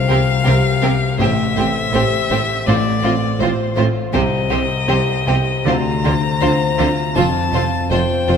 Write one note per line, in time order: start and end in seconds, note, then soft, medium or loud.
0.00 0.43 C2 medium
0.00 1.23 C3 medium
0.00 1.23 F4 soft
0.00 1.19 F5 medium
0.08 0.16 C2 medium
0.08 0.17 C3 medium
0.08 1.57 C4 soft
0.08 0.17 C4 soft
0.08 0.17 G4 soft
0.08 0.17 A#4 soft
0.44 0.54 C2 medium
0.44 0.53 C3 medium
0.44 0.54 C4 soft
0.44 0.52 G4 soft
0.44 1.15 G4 soft
0.44 0.54 A#4 medium
0.44 1.23 A#4 soft
0.44 1.16 C5 soft
0.82 0.91 C2 soft
0.82 0.91 C3 medium
0.82 0.91 C4 medium
0.82 0.90 G4 soft
0.82 2.31 G4 soft
0.82 0.90 A#4 soft
1.19 1.91 A1 medium
1.19 1.28 A1 medium
1.19 1.27 A2 medium
1.19 2.67 A2 medium
1.19 1.28 C4 soft
1.19 1.29 G4 medium
1.19 1.27 C5 soft
1.19 2.68 E5 medium
1.56 1.66 A1 medium
1.56 1.64 A2 medium
1.56 3.03 C4 soft
1.56 1.66 C4 soft
1.56 1.66 G4 soft
1.56 1.64 C5 soft
1.93 2.02 A1 medium
1.93 2.01 A2 medium
1.93 2.02 C4 medium
1.93 2.63 G4 soft
1.93 2.03 G4 soft
1.93 2.01 C5 medium
1.93 2.63 C5 soft
1.93 3.39 C5 medium
2.30 2.38 A1 medium
2.30 2.38 A2 medium
2.30 2.39 C4 soft
2.30 2.40 G4 soft
2.30 2.71 G4 soft
2.30 2.38 C5 soft
2.67 3.38 A1 medium
2.67 2.76 A1 medium
2.67 2.75 A2 medium
2.67 4.17 A2 medium
2.67 2.75 C4 soft
2.67 2.76 F4 medium
2.67 2.75 C5 medium
2.67 3.41 D5 medium
3.03 3.12 A1 soft
3.03 3.11 A2 medium
3.03 4.50 C4 soft
3.03 3.13 C4 soft
3.03 3.13 F4 medium
3.03 3.11 C5 soft
3.40 3.49 A1 medium
3.40 3.48 A2 medium
3.40 3.48 C4 medium
3.40 4.10 F4 soft
3.40 3.50 F4 soft
3.40 3.77 C5 medium
3.40 3.48 C5 medium
3.40 4.88 C5 medium
3.40 4.10 C5 soft
3.77 3.86 A1 medium
3.77 3.85 A2 medium
3.77 3.85 C4 soft
3.77 4.17 F4 medium
3.77 3.86 F4 soft
3.77 3.85 C5 medium
4.14 4.22 C2 medium
4.14 4.86 C2 medium
4.14 4.22 C3 medium
4.14 5.70 C3 medium
4.14 4.22 C4 medium
4.14 4.22 G4 medium
4.14 4.22 C5 medium
4.14 5.68 D#5 medium
4.50 4.59 C2 soft
4.50 4.60 C3 soft
4.50 4.59 C4 medium
4.50 6.03 C4 soft
4.50 4.58 G4 medium
4.50 4.58 C5 soft
4.88 4.97 C2 medium
4.88 4.97 C3 medium
4.88 4.96 C4 medium
4.88 5.63 G4 soft
4.88 4.96 G4 medium
4.88 4.96 C5 medium
4.88 5.63 C5 soft
4.88 6.40 C5 medium
5.27 5.36 C2 medium
5.27 5.35 C3 medium
5.27 5.35 C4 soft
5.27 5.70 G4 soft
5.27 5.36 G4 soft
5.27 5.36 C5 soft
5.66 6.39 D2 medium
5.66 5.75 D2 medium
5.66 5.74 D3 medium
5.66 7.19 D3 medium
5.66 5.75 C4 medium
5.66 5.75 F4 medium
5.66 5.74 C5 medium
5.66 7.17 A#5 loud
6.04 6.13 D2 medium
6.04 6.12 D3 medium
6.04 8.37 C4 soft
6.04 6.13 C4 soft
6.04 6.12 F4 soft
6.04 6.13 C5 soft
6.41 6.50 D2 medium
6.41 6.49 D3 medium
6.41 6.50 C4 medium
6.41 7.12 F4 soft
6.41 6.50 F4 soft
6.41 7.90 C5 soft
6.41 6.49 C5 medium
6.41 7.12 C5 soft
6.78 6.87 D2 medium
6.78 6.86 D3 medium
6.78 6.87 C4 medium
6.78 6.86 F4 medium
6.78 7.52 F4 medium
6.78 6.87 C5 medium
7.15 7.24 F1 medium
7.15 7.23 F2 medium
7.15 7.89 F2 medium
7.15 8.37 F3 medium
7.15 7.25 C4 medium
7.15 7.25 F4 medium
7.15 7.23 C5 soft
7.15 7.91 A5 medium
7.52 7.61 F1 medium
7.52 7.60 F2 medium
7.52 7.63 C4 soft
7.52 8.27 F4 soft
7.52 7.62 F4 medium
7.52 7.61 C5 soft
7.91 8.00 F1 medium
7.91 7.99 F2 medium
7.91 8.00 C4 medium
7.91 8.37 F4 soft
7.91 8.00 F4 soft
7.91 8.37 C5 soft
7.91 8.37 C5 medium
7.91 7.99 C5 medium
7.91 8.37 G5 medium
8.28 8.36 F1 medium
8.28 8.36 F2 medium
8.28 8.37 C4 soft
8.28 8.37 F4 soft
8.28 8.36 F4 soft
8.28 8.37 C5 soft